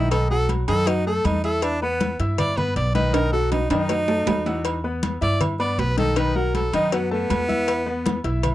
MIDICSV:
0, 0, Header, 1, 5, 480
1, 0, Start_track
1, 0, Key_signature, 1, "minor"
1, 0, Tempo, 378119
1, 147, Time_signature, 4, 2, 24, 8
1, 10850, End_track
2, 0, Start_track
2, 0, Title_t, "Tenor saxophone"
2, 0, Program_c, 0, 66
2, 0, Note_on_c, 0, 64, 92
2, 136, Note_off_c, 0, 64, 0
2, 141, Note_on_c, 0, 69, 90
2, 377, Note_off_c, 0, 69, 0
2, 386, Note_on_c, 0, 69, 109
2, 620, Note_off_c, 0, 69, 0
2, 864, Note_on_c, 0, 69, 115
2, 1111, Note_on_c, 0, 63, 106
2, 1130, Note_off_c, 0, 69, 0
2, 1342, Note_off_c, 0, 63, 0
2, 1355, Note_on_c, 0, 69, 102
2, 1595, Note_on_c, 0, 63, 101
2, 1614, Note_off_c, 0, 69, 0
2, 1824, Note_off_c, 0, 63, 0
2, 1830, Note_on_c, 0, 69, 108
2, 2069, Note_on_c, 0, 62, 103
2, 2088, Note_off_c, 0, 69, 0
2, 2301, Note_off_c, 0, 62, 0
2, 2310, Note_on_c, 0, 59, 104
2, 2774, Note_off_c, 0, 59, 0
2, 3031, Note_on_c, 0, 74, 109
2, 3259, Note_on_c, 0, 71, 94
2, 3278, Note_off_c, 0, 74, 0
2, 3496, Note_off_c, 0, 71, 0
2, 3506, Note_on_c, 0, 74, 99
2, 3730, Note_off_c, 0, 74, 0
2, 3738, Note_on_c, 0, 71, 101
2, 3981, Note_on_c, 0, 70, 102
2, 4000, Note_off_c, 0, 71, 0
2, 4217, Note_off_c, 0, 70, 0
2, 4223, Note_on_c, 0, 69, 99
2, 4455, Note_off_c, 0, 69, 0
2, 4463, Note_on_c, 0, 63, 91
2, 4698, Note_off_c, 0, 63, 0
2, 4711, Note_on_c, 0, 63, 115
2, 6107, Note_off_c, 0, 63, 0
2, 6631, Note_on_c, 0, 74, 101
2, 6862, Note_off_c, 0, 74, 0
2, 7111, Note_on_c, 0, 74, 96
2, 7354, Note_on_c, 0, 71, 104
2, 7373, Note_off_c, 0, 74, 0
2, 7584, Note_off_c, 0, 71, 0
2, 7599, Note_on_c, 0, 69, 103
2, 7835, Note_on_c, 0, 71, 97
2, 7854, Note_off_c, 0, 69, 0
2, 8075, Note_on_c, 0, 70, 99
2, 8094, Note_off_c, 0, 71, 0
2, 8304, Note_off_c, 0, 70, 0
2, 8320, Note_on_c, 0, 69, 86
2, 8547, Note_off_c, 0, 69, 0
2, 8567, Note_on_c, 0, 63, 105
2, 8803, Note_on_c, 0, 59, 98
2, 8822, Note_off_c, 0, 63, 0
2, 9029, Note_off_c, 0, 59, 0
2, 9042, Note_on_c, 0, 59, 120
2, 10432, Note_off_c, 0, 59, 0
2, 10850, End_track
3, 0, Start_track
3, 0, Title_t, "Grand piano"
3, 0, Program_c, 1, 0
3, 144, Note_on_c, 1, 51, 84
3, 149, Note_on_c, 1, 63, 83
3, 154, Note_on_c, 1, 75, 85
3, 342, Note_off_c, 1, 51, 0
3, 345, Note_off_c, 1, 63, 0
3, 348, Note_off_c, 1, 75, 0
3, 388, Note_on_c, 1, 54, 77
3, 393, Note_on_c, 1, 66, 78
3, 394, Note_on_c, 1, 78, 78
3, 781, Note_off_c, 1, 54, 0
3, 785, Note_off_c, 1, 66, 0
3, 785, Note_off_c, 1, 78, 0
3, 864, Note_on_c, 1, 51, 90
3, 869, Note_on_c, 1, 63, 94
3, 870, Note_on_c, 1, 75, 90
3, 1062, Note_off_c, 1, 51, 0
3, 1065, Note_off_c, 1, 63, 0
3, 1066, Note_off_c, 1, 75, 0
3, 1106, Note_on_c, 1, 54, 74
3, 1115, Note_on_c, 1, 66, 74
3, 1115, Note_on_c, 1, 78, 76
3, 1304, Note_off_c, 1, 54, 0
3, 1309, Note_off_c, 1, 66, 0
3, 1309, Note_off_c, 1, 78, 0
3, 1350, Note_on_c, 1, 57, 76
3, 1357, Note_on_c, 1, 69, 76
3, 1359, Note_on_c, 1, 81, 78
3, 1743, Note_off_c, 1, 57, 0
3, 1747, Note_off_c, 1, 69, 0
3, 1748, Note_off_c, 1, 81, 0
3, 1828, Note_on_c, 1, 64, 79
3, 1834, Note_on_c, 1, 76, 76
3, 1839, Note_on_c, 1, 88, 83
3, 2222, Note_off_c, 1, 64, 0
3, 2225, Note_off_c, 1, 76, 0
3, 2228, Note_off_c, 1, 88, 0
3, 2312, Note_on_c, 1, 59, 78
3, 2315, Note_on_c, 1, 71, 82
3, 2319, Note_on_c, 1, 83, 81
3, 2704, Note_off_c, 1, 59, 0
3, 2706, Note_off_c, 1, 71, 0
3, 2708, Note_off_c, 1, 83, 0
3, 2793, Note_on_c, 1, 64, 84
3, 2794, Note_on_c, 1, 76, 83
3, 2803, Note_on_c, 1, 88, 83
3, 3185, Note_off_c, 1, 64, 0
3, 3185, Note_off_c, 1, 76, 0
3, 3190, Note_off_c, 1, 88, 0
3, 3266, Note_on_c, 1, 59, 81
3, 3271, Note_on_c, 1, 71, 80
3, 3272, Note_on_c, 1, 83, 77
3, 3660, Note_off_c, 1, 59, 0
3, 3664, Note_off_c, 1, 71, 0
3, 3664, Note_off_c, 1, 83, 0
3, 3740, Note_on_c, 1, 51, 96
3, 3746, Note_on_c, 1, 63, 90
3, 3752, Note_on_c, 1, 75, 96
3, 3940, Note_off_c, 1, 51, 0
3, 3944, Note_off_c, 1, 63, 0
3, 3947, Note_off_c, 1, 75, 0
3, 3975, Note_on_c, 1, 51, 83
3, 3981, Note_on_c, 1, 63, 93
3, 3981, Note_on_c, 1, 75, 86
3, 4177, Note_off_c, 1, 51, 0
3, 4181, Note_off_c, 1, 63, 0
3, 4181, Note_off_c, 1, 75, 0
3, 4219, Note_on_c, 1, 54, 80
3, 4225, Note_on_c, 1, 66, 84
3, 4227, Note_on_c, 1, 78, 75
3, 4616, Note_off_c, 1, 54, 0
3, 4620, Note_off_c, 1, 66, 0
3, 4621, Note_off_c, 1, 78, 0
3, 4707, Note_on_c, 1, 51, 99
3, 4709, Note_on_c, 1, 63, 91
3, 4712, Note_on_c, 1, 75, 90
3, 4904, Note_off_c, 1, 51, 0
3, 4906, Note_off_c, 1, 63, 0
3, 4908, Note_off_c, 1, 75, 0
3, 4946, Note_on_c, 1, 54, 75
3, 4947, Note_on_c, 1, 66, 75
3, 4954, Note_on_c, 1, 78, 72
3, 5144, Note_off_c, 1, 54, 0
3, 5144, Note_off_c, 1, 66, 0
3, 5149, Note_off_c, 1, 78, 0
3, 5181, Note_on_c, 1, 57, 75
3, 5186, Note_on_c, 1, 69, 78
3, 5190, Note_on_c, 1, 81, 73
3, 5577, Note_off_c, 1, 57, 0
3, 5581, Note_off_c, 1, 69, 0
3, 5583, Note_off_c, 1, 81, 0
3, 5658, Note_on_c, 1, 52, 77
3, 5664, Note_on_c, 1, 78, 77
3, 5668, Note_on_c, 1, 88, 78
3, 6056, Note_off_c, 1, 52, 0
3, 6059, Note_off_c, 1, 78, 0
3, 6062, Note_off_c, 1, 88, 0
3, 6143, Note_on_c, 1, 59, 79
3, 6146, Note_on_c, 1, 71, 79
3, 6151, Note_on_c, 1, 83, 76
3, 6539, Note_off_c, 1, 59, 0
3, 6541, Note_off_c, 1, 71, 0
3, 6544, Note_off_c, 1, 83, 0
3, 6617, Note_on_c, 1, 64, 86
3, 6621, Note_on_c, 1, 76, 81
3, 6624, Note_on_c, 1, 88, 78
3, 7015, Note_off_c, 1, 64, 0
3, 7017, Note_off_c, 1, 76, 0
3, 7019, Note_off_c, 1, 88, 0
3, 7102, Note_on_c, 1, 59, 82
3, 7104, Note_on_c, 1, 71, 77
3, 7107, Note_on_c, 1, 83, 81
3, 7498, Note_off_c, 1, 59, 0
3, 7499, Note_off_c, 1, 71, 0
3, 7501, Note_off_c, 1, 83, 0
3, 7580, Note_on_c, 1, 51, 90
3, 7587, Note_on_c, 1, 63, 91
3, 7592, Note_on_c, 1, 75, 87
3, 7780, Note_off_c, 1, 51, 0
3, 7784, Note_off_c, 1, 63, 0
3, 7787, Note_off_c, 1, 75, 0
3, 7825, Note_on_c, 1, 51, 88
3, 7832, Note_on_c, 1, 63, 92
3, 7837, Note_on_c, 1, 75, 85
3, 8023, Note_off_c, 1, 51, 0
3, 8027, Note_off_c, 1, 63, 0
3, 8030, Note_off_c, 1, 75, 0
3, 8067, Note_on_c, 1, 54, 81
3, 8070, Note_on_c, 1, 78, 82
3, 8071, Note_on_c, 1, 66, 78
3, 8461, Note_off_c, 1, 54, 0
3, 8463, Note_off_c, 1, 66, 0
3, 8463, Note_off_c, 1, 78, 0
3, 8554, Note_on_c, 1, 51, 92
3, 8559, Note_on_c, 1, 63, 97
3, 8561, Note_on_c, 1, 75, 100
3, 8748, Note_off_c, 1, 51, 0
3, 8752, Note_off_c, 1, 63, 0
3, 8753, Note_off_c, 1, 75, 0
3, 8790, Note_on_c, 1, 54, 72
3, 8796, Note_on_c, 1, 66, 75
3, 8800, Note_on_c, 1, 78, 74
3, 8986, Note_off_c, 1, 54, 0
3, 8990, Note_off_c, 1, 66, 0
3, 8992, Note_off_c, 1, 78, 0
3, 9027, Note_on_c, 1, 57, 79
3, 9031, Note_on_c, 1, 69, 84
3, 9031, Note_on_c, 1, 81, 84
3, 9421, Note_off_c, 1, 57, 0
3, 9423, Note_off_c, 1, 81, 0
3, 9424, Note_off_c, 1, 69, 0
3, 9498, Note_on_c, 1, 64, 82
3, 9507, Note_on_c, 1, 76, 76
3, 9508, Note_on_c, 1, 88, 84
3, 9896, Note_off_c, 1, 64, 0
3, 9901, Note_off_c, 1, 76, 0
3, 9901, Note_off_c, 1, 88, 0
3, 9979, Note_on_c, 1, 59, 82
3, 9982, Note_on_c, 1, 71, 82
3, 9983, Note_on_c, 1, 83, 80
3, 10376, Note_off_c, 1, 59, 0
3, 10378, Note_off_c, 1, 71, 0
3, 10379, Note_off_c, 1, 83, 0
3, 10465, Note_on_c, 1, 76, 82
3, 10466, Note_on_c, 1, 64, 82
3, 10474, Note_on_c, 1, 88, 81
3, 10850, Note_off_c, 1, 64, 0
3, 10850, Note_off_c, 1, 76, 0
3, 10850, Note_off_c, 1, 88, 0
3, 10850, End_track
4, 0, Start_track
4, 0, Title_t, "Upright bass"
4, 0, Program_c, 2, 32
4, 0, Note_on_c, 2, 35, 97
4, 788, Note_off_c, 2, 35, 0
4, 864, Note_on_c, 2, 42, 95
4, 1536, Note_off_c, 2, 42, 0
4, 1582, Note_on_c, 2, 40, 97
4, 2710, Note_off_c, 2, 40, 0
4, 2783, Note_on_c, 2, 43, 93
4, 3455, Note_off_c, 2, 43, 0
4, 3503, Note_on_c, 2, 35, 102
4, 4631, Note_off_c, 2, 35, 0
4, 4694, Note_on_c, 2, 42, 92
4, 5370, Note_off_c, 2, 42, 0
4, 5414, Note_on_c, 2, 40, 96
4, 6547, Note_off_c, 2, 40, 0
4, 6621, Note_on_c, 2, 43, 95
4, 7294, Note_off_c, 2, 43, 0
4, 7338, Note_on_c, 2, 35, 99
4, 8468, Note_off_c, 2, 35, 0
4, 8544, Note_on_c, 2, 42, 89
4, 9216, Note_off_c, 2, 42, 0
4, 9263, Note_on_c, 2, 40, 92
4, 10391, Note_off_c, 2, 40, 0
4, 10462, Note_on_c, 2, 35, 89
4, 10850, Note_off_c, 2, 35, 0
4, 10850, End_track
5, 0, Start_track
5, 0, Title_t, "Drums"
5, 143, Note_on_c, 9, 68, 100
5, 148, Note_on_c, 9, 56, 100
5, 270, Note_off_c, 9, 68, 0
5, 275, Note_off_c, 9, 56, 0
5, 387, Note_on_c, 9, 63, 35
5, 514, Note_off_c, 9, 63, 0
5, 622, Note_on_c, 9, 63, 62
5, 625, Note_on_c, 9, 68, 87
5, 629, Note_on_c, 9, 56, 70
5, 749, Note_off_c, 9, 63, 0
5, 752, Note_off_c, 9, 68, 0
5, 756, Note_off_c, 9, 56, 0
5, 863, Note_on_c, 9, 68, 112
5, 865, Note_on_c, 9, 56, 66
5, 866, Note_on_c, 9, 63, 35
5, 990, Note_off_c, 9, 68, 0
5, 992, Note_off_c, 9, 56, 0
5, 993, Note_off_c, 9, 63, 0
5, 1104, Note_on_c, 9, 68, 72
5, 1105, Note_on_c, 9, 63, 36
5, 1106, Note_on_c, 9, 56, 116
5, 1230, Note_off_c, 9, 68, 0
5, 1232, Note_off_c, 9, 63, 0
5, 1233, Note_off_c, 9, 56, 0
5, 1349, Note_on_c, 9, 63, 37
5, 1475, Note_off_c, 9, 63, 0
5, 1584, Note_on_c, 9, 68, 111
5, 1587, Note_on_c, 9, 56, 71
5, 1589, Note_on_c, 9, 63, 89
5, 1710, Note_off_c, 9, 68, 0
5, 1714, Note_off_c, 9, 56, 0
5, 1716, Note_off_c, 9, 63, 0
5, 1826, Note_on_c, 9, 68, 72
5, 1953, Note_off_c, 9, 68, 0
5, 2061, Note_on_c, 9, 56, 100
5, 2066, Note_on_c, 9, 68, 100
5, 2071, Note_on_c, 9, 63, 35
5, 2188, Note_off_c, 9, 56, 0
5, 2193, Note_off_c, 9, 68, 0
5, 2198, Note_off_c, 9, 63, 0
5, 2313, Note_on_c, 9, 63, 33
5, 2439, Note_off_c, 9, 63, 0
5, 2545, Note_on_c, 9, 56, 68
5, 2546, Note_on_c, 9, 68, 89
5, 2550, Note_on_c, 9, 63, 102
5, 2672, Note_off_c, 9, 56, 0
5, 2673, Note_off_c, 9, 68, 0
5, 2677, Note_off_c, 9, 63, 0
5, 2788, Note_on_c, 9, 56, 72
5, 2915, Note_off_c, 9, 56, 0
5, 3026, Note_on_c, 9, 56, 111
5, 3027, Note_on_c, 9, 68, 106
5, 3031, Note_on_c, 9, 63, 36
5, 3031, Note_on_c, 9, 64, 82
5, 3153, Note_off_c, 9, 56, 0
5, 3154, Note_off_c, 9, 68, 0
5, 3157, Note_off_c, 9, 63, 0
5, 3157, Note_off_c, 9, 64, 0
5, 3267, Note_on_c, 9, 68, 85
5, 3274, Note_on_c, 9, 63, 36
5, 3274, Note_on_c, 9, 64, 75
5, 3394, Note_off_c, 9, 68, 0
5, 3401, Note_off_c, 9, 63, 0
5, 3401, Note_off_c, 9, 64, 0
5, 3507, Note_on_c, 9, 56, 69
5, 3511, Note_on_c, 9, 63, 37
5, 3634, Note_off_c, 9, 56, 0
5, 3638, Note_off_c, 9, 63, 0
5, 3746, Note_on_c, 9, 56, 71
5, 3750, Note_on_c, 9, 63, 85
5, 3873, Note_off_c, 9, 56, 0
5, 3877, Note_off_c, 9, 63, 0
5, 3985, Note_on_c, 9, 65, 77
5, 3985, Note_on_c, 9, 68, 99
5, 3987, Note_on_c, 9, 56, 100
5, 3988, Note_on_c, 9, 63, 37
5, 4112, Note_off_c, 9, 65, 0
5, 4112, Note_off_c, 9, 68, 0
5, 4114, Note_off_c, 9, 56, 0
5, 4115, Note_off_c, 9, 63, 0
5, 4229, Note_on_c, 9, 63, 34
5, 4356, Note_off_c, 9, 63, 0
5, 4464, Note_on_c, 9, 65, 74
5, 4464, Note_on_c, 9, 68, 85
5, 4465, Note_on_c, 9, 56, 69
5, 4474, Note_on_c, 9, 63, 65
5, 4591, Note_off_c, 9, 65, 0
5, 4591, Note_off_c, 9, 68, 0
5, 4592, Note_off_c, 9, 56, 0
5, 4601, Note_off_c, 9, 63, 0
5, 4700, Note_on_c, 9, 56, 70
5, 4704, Note_on_c, 9, 65, 81
5, 4704, Note_on_c, 9, 68, 104
5, 4712, Note_on_c, 9, 63, 38
5, 4827, Note_off_c, 9, 56, 0
5, 4831, Note_off_c, 9, 65, 0
5, 4831, Note_off_c, 9, 68, 0
5, 4839, Note_off_c, 9, 63, 0
5, 4941, Note_on_c, 9, 56, 106
5, 4948, Note_on_c, 9, 66, 79
5, 4948, Note_on_c, 9, 68, 71
5, 4953, Note_on_c, 9, 63, 36
5, 5068, Note_off_c, 9, 56, 0
5, 5075, Note_off_c, 9, 66, 0
5, 5075, Note_off_c, 9, 68, 0
5, 5080, Note_off_c, 9, 63, 0
5, 5180, Note_on_c, 9, 66, 101
5, 5189, Note_on_c, 9, 63, 35
5, 5307, Note_off_c, 9, 66, 0
5, 5316, Note_off_c, 9, 63, 0
5, 5421, Note_on_c, 9, 66, 102
5, 5421, Note_on_c, 9, 68, 115
5, 5423, Note_on_c, 9, 56, 69
5, 5426, Note_on_c, 9, 63, 90
5, 5548, Note_off_c, 9, 66, 0
5, 5548, Note_off_c, 9, 68, 0
5, 5550, Note_off_c, 9, 56, 0
5, 5553, Note_off_c, 9, 63, 0
5, 5665, Note_on_c, 9, 66, 72
5, 5665, Note_on_c, 9, 68, 70
5, 5792, Note_off_c, 9, 66, 0
5, 5792, Note_off_c, 9, 68, 0
5, 5899, Note_on_c, 9, 56, 105
5, 5904, Note_on_c, 9, 63, 34
5, 5906, Note_on_c, 9, 68, 108
5, 6026, Note_off_c, 9, 56, 0
5, 6031, Note_off_c, 9, 63, 0
5, 6033, Note_off_c, 9, 68, 0
5, 6147, Note_on_c, 9, 63, 37
5, 6274, Note_off_c, 9, 63, 0
5, 6384, Note_on_c, 9, 63, 101
5, 6386, Note_on_c, 9, 56, 71
5, 6389, Note_on_c, 9, 68, 86
5, 6511, Note_off_c, 9, 63, 0
5, 6513, Note_off_c, 9, 56, 0
5, 6516, Note_off_c, 9, 68, 0
5, 6627, Note_on_c, 9, 56, 69
5, 6754, Note_off_c, 9, 56, 0
5, 6863, Note_on_c, 9, 56, 110
5, 6865, Note_on_c, 9, 63, 36
5, 6865, Note_on_c, 9, 64, 85
5, 6870, Note_on_c, 9, 68, 113
5, 6990, Note_off_c, 9, 56, 0
5, 6992, Note_off_c, 9, 63, 0
5, 6992, Note_off_c, 9, 64, 0
5, 6997, Note_off_c, 9, 68, 0
5, 7105, Note_on_c, 9, 63, 34
5, 7107, Note_on_c, 9, 68, 86
5, 7232, Note_off_c, 9, 63, 0
5, 7234, Note_off_c, 9, 68, 0
5, 7348, Note_on_c, 9, 63, 37
5, 7349, Note_on_c, 9, 56, 68
5, 7349, Note_on_c, 9, 66, 78
5, 7475, Note_off_c, 9, 56, 0
5, 7475, Note_off_c, 9, 63, 0
5, 7476, Note_off_c, 9, 66, 0
5, 7587, Note_on_c, 9, 56, 72
5, 7588, Note_on_c, 9, 63, 87
5, 7714, Note_off_c, 9, 56, 0
5, 7715, Note_off_c, 9, 63, 0
5, 7823, Note_on_c, 9, 56, 104
5, 7827, Note_on_c, 9, 68, 105
5, 7828, Note_on_c, 9, 63, 35
5, 7950, Note_off_c, 9, 56, 0
5, 7954, Note_off_c, 9, 68, 0
5, 7955, Note_off_c, 9, 63, 0
5, 8073, Note_on_c, 9, 63, 36
5, 8200, Note_off_c, 9, 63, 0
5, 8309, Note_on_c, 9, 63, 64
5, 8311, Note_on_c, 9, 68, 88
5, 8312, Note_on_c, 9, 56, 72
5, 8436, Note_off_c, 9, 63, 0
5, 8438, Note_off_c, 9, 56, 0
5, 8438, Note_off_c, 9, 68, 0
5, 8550, Note_on_c, 9, 56, 72
5, 8550, Note_on_c, 9, 68, 114
5, 8553, Note_on_c, 9, 63, 37
5, 8677, Note_off_c, 9, 56, 0
5, 8677, Note_off_c, 9, 68, 0
5, 8680, Note_off_c, 9, 63, 0
5, 8790, Note_on_c, 9, 56, 115
5, 8790, Note_on_c, 9, 68, 69
5, 8794, Note_on_c, 9, 63, 33
5, 8917, Note_off_c, 9, 56, 0
5, 8917, Note_off_c, 9, 68, 0
5, 8921, Note_off_c, 9, 63, 0
5, 9033, Note_on_c, 9, 63, 36
5, 9160, Note_off_c, 9, 63, 0
5, 9270, Note_on_c, 9, 66, 77
5, 9270, Note_on_c, 9, 68, 111
5, 9271, Note_on_c, 9, 63, 92
5, 9274, Note_on_c, 9, 56, 73
5, 9397, Note_off_c, 9, 66, 0
5, 9397, Note_off_c, 9, 68, 0
5, 9398, Note_off_c, 9, 63, 0
5, 9401, Note_off_c, 9, 56, 0
5, 9512, Note_on_c, 9, 68, 68
5, 9514, Note_on_c, 9, 63, 73
5, 9639, Note_off_c, 9, 68, 0
5, 9641, Note_off_c, 9, 63, 0
5, 9750, Note_on_c, 9, 56, 104
5, 9750, Note_on_c, 9, 68, 101
5, 9759, Note_on_c, 9, 63, 34
5, 9877, Note_off_c, 9, 56, 0
5, 9877, Note_off_c, 9, 68, 0
5, 9886, Note_off_c, 9, 63, 0
5, 9994, Note_on_c, 9, 63, 34
5, 10121, Note_off_c, 9, 63, 0
5, 10227, Note_on_c, 9, 56, 75
5, 10232, Note_on_c, 9, 68, 91
5, 10238, Note_on_c, 9, 63, 99
5, 10354, Note_off_c, 9, 56, 0
5, 10359, Note_off_c, 9, 68, 0
5, 10364, Note_off_c, 9, 63, 0
5, 10465, Note_on_c, 9, 56, 71
5, 10592, Note_off_c, 9, 56, 0
5, 10706, Note_on_c, 9, 56, 116
5, 10706, Note_on_c, 9, 68, 110
5, 10715, Note_on_c, 9, 63, 36
5, 10715, Note_on_c, 9, 64, 79
5, 10833, Note_off_c, 9, 56, 0
5, 10833, Note_off_c, 9, 68, 0
5, 10842, Note_off_c, 9, 63, 0
5, 10842, Note_off_c, 9, 64, 0
5, 10850, End_track
0, 0, End_of_file